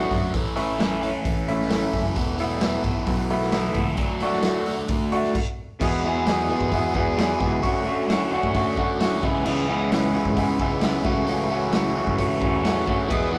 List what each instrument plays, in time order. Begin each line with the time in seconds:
Already playing: clean electric guitar D3 A3 B3 F#4, overdriven electric guitar D4
0.09 fingered electric bass F#2, overdriven electric guitar D4 F#4, kick, open hi-hat
0.33 fingered electric bass A1, overdriven electric guitar E3 A3 C#4 A4, kick, open hi-hat
0.56 clean electric guitar E3 A3 C#4 E4, overdriven electric guitar A4, open hi-hat
0.80 clean electric guitar E3 A3 C#4 E4, overdriven electric guitar A4, snare, open hi-hat
1.03 overdriven electric guitar A3 C#4 A4, open hi-hat
1.25 fingered electric bass A1, kick, open hi-hat
1.48 clean electric guitar E3 A3 C#4 E4, open hi-hat
1.60 snare
1.70 clean electric guitar E3 A3 C#4 E4, overdriven electric guitar A4, snare, open hi-hat
1.93 fingered electric bass F#1, overdriven electric guitar A3 C#4 A4, kick, open hi-hat
2.15 fingered electric bass E1, overdriven electric guitar E3 B3 E4 A4, kick, open hi-hat
2.38 clean electric guitar E3 A3 B3 E4, overdriven electric guitar A4, open hi-hat
2.61 clean electric guitar E3 A3 B3 E4, overdriven electric guitar A4, snare, open hi-hat
2.83 fingered electric bass A1, overdriven electric guitar B3 E4 A4, kick, open hi-hat
3.07 fingered electric bass B1, kick, open hi-hat
3.30 clean electric guitar E3 A3 B3 E4, open hi-hat
3.42 snare
3.52 clean electric guitar E3 A3 B3 E4, overdriven electric guitar A4, snare, open hi-hat
3.73 fingered electric bass C#2, overdriven electric guitar B3 E4 A4, kick, open hi-hat
3.96 fingered electric bass D2, overdriven electric guitar F#3 A3 D4 A4, kick, open hi-hat
4.20 clean electric guitar D3 A3 D4 F#4, overdriven electric guitar A4, open hi-hat
4.32 snare
4.42 clean electric guitar D3 A3 D4 F#4, overdriven electric guitar F#3 A4, snare, open hi-hat
4.66 overdriven electric guitar A3 D4 A4, open hi-hat
4.88 fingered electric bass D2, kick, open hi-hat
5.12 clean electric guitar D3 A3 D4 F#4, open hi-hat
5.23 snare
5.35 kick, crash
5.80 clean electric guitar E2 B2 E3 G#3 B3 G#4, fingered electric bass E2, overdriven electric guitar E4, kick, crash
6.04 clean electric guitar E2 B2 E3 G#3 B3 G#4, overdriven electric guitar E4
6.26 clean electric guitar E2 B2 E3 G#3 B3, overdriven electric guitar E4, snare, open hi-hat
6.30 clean electric guitar G#4
6.49 clean electric guitar E2 B2 E3 G#3 B3 G#4, overdriven electric guitar E4
6.61 fingered electric bass E2, kick
6.72 fingered electric bass E2, clean electric guitar E2 B2 E3 G#3 B3 G#4, overdriven electric guitar E4, kick, open hi-hat
6.94 clean electric guitar E2 B2 E3 G#3 B3 G#4, fingered electric bass E2, overdriven electric guitar E4, kick
7.15 clean electric guitar E2 B2 E3 G#3 B3 G#4, overdriven electric guitar E4, snare, open hi-hat
7.39 fingered electric bass C#2, clean electric guitar E2 B2 E3 G#3 B3 G#4, overdriven electric guitar E4, kick
7.62 fingered electric bass D2, clean electric guitar D3 A3 C#4 F#4, overdriven electric guitar D4, kick, open hi-hat
7.85 clean electric guitar D3 A3 C#4 F#4, overdriven electric guitar D4
8.08 clean electric guitar D3 A3 C#4 F#4, overdriven electric guitar D4, snare, open hi-hat
8.32 clean electric guitar D3 A3 C#4 F#4, overdriven electric guitar D4
8.43 fingered electric bass D2, kick
8.54 fingered electric bass D2, clean electric guitar D3 A3 C#4 F#4, overdriven electric guitar D4, kick, open hi-hat
8.77 fingered electric bass D2, clean electric guitar D3 A3 C#4 F#4, overdriven electric guitar D4, kick
8.99 clean electric guitar D3 A3 C#4 F#4, overdriven electric guitar D4, snare, open hi-hat
9.22 fingered electric bass C#2, clean electric guitar C#3 E3 G#3 B3 E4, overdriven electric guitar C#4 G#4, kick
9.45 fingered electric bass C#2, clean electric guitar C#3 E3 G#3 B3 E4, overdriven electric guitar C#4 G#4, crash
9.67 clean electric guitar C#3 E3 G#3 B3 E4, overdriven electric guitar C#4 G#4
9.92 clean electric guitar C#3 E3 G#3 B3 E4, overdriven electric guitar C#4 G#4, snare, open hi-hat
10.14 clean electric guitar C#3 E3 G#3 B3 E4, overdriven electric guitar C#4 G#4
10.25 fingered electric bass C#2, kick
10.36 fingered electric bass C#2, clean electric guitar C#3 E3 G#3 B3 E4, overdriven electric guitar C#4 G#4, kick, open hi-hat
10.60 fingered electric bass C#2, clean electric guitar C#3 E3 G#3 B3 E4, overdriven electric guitar C#4 G#4, kick
10.81 clean electric guitar C#3 E3 G#3 B3 E4, overdriven electric guitar C#4 G#4, snare, open hi-hat
11.04 fingered electric bass C#2, clean electric guitar C#3 E3 A3 C#4 F#4, overdriven electric guitar A4, kick
11.27 fingered electric bass C#2, clean electric guitar C#3 E3 A3 C#4 F#4, overdriven electric guitar A4, open hi-hat
11.50 clean electric guitar C#3 E3 A3 C#4 F#4, overdriven electric guitar A4
11.72 clean electric guitar C#3 E3 A3 C#4 F#4, overdriven electric guitar A4, snare, open hi-hat
11.96 clean electric guitar C#3 E3 A3 C#4 F#4, overdriven electric guitar A4
12.07 fingered electric bass C#2, kick
12.18 fingered electric bass C#2, clean electric guitar C#3 E3 A3 C#4 F#4, overdriven electric guitar A4, kick, open hi-hat
12.41 fingered electric bass E2, clean electric guitar C#3 E3 A3 C#4 F#4, overdriven electric guitar A4, kick
12.63 clean electric guitar C#3 E3 A3 C#4 F#4, overdriven electric guitar A4, snare, open hi-hat
12.87 fingered electric bass D2, clean electric guitar C#3 E3 A3 C#4 F#4, overdriven electric guitar A4, kick
13.09 clean electric guitar E2 B2 E3 G#3 B3 G#4, fingered electric bass E2, overdriven electric guitar E4, kick, crash
13.33 clean electric guitar E2 B2 E3 G#3 B3 G#4, overdriven electric guitar E4